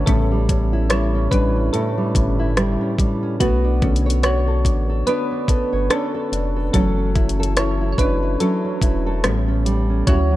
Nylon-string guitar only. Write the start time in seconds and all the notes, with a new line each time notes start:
Already playing: D3 A3 C#4 F#4
0.07 A2
0.31 G3
0.49 C#4
0.73 E4
0.90 G3
1.15 C#4
1.32 G3
1.56 C#4
1.74 A2
1.98 G3
2.15 C#4
2.39 E4
2.57 G3
2.81 C#4
2.99 G3
3.23 C#4
3.40 B3
3.64 D4
3.82 A4
4.06 C#5
4.23 D4
4.48 A4
4.65 D4
4.89 A4
5.07 B3
5.31 D4
5.48 A4
5.73 C#5
5.90 D4
6.14 A4
6.32 D4
6.56 A4
6.74 F#3
6.98 C#4
7.15 E4
7.39 A4
7.57 C#4
7.81 E4
7.98 C#4
8.23 E4
8.40 F#3
8.65 C#4
8.82 E4
9.06 A4
9.24 A2
9.48 C#4
9.65 G3
9.89 C#4
10.31 F#3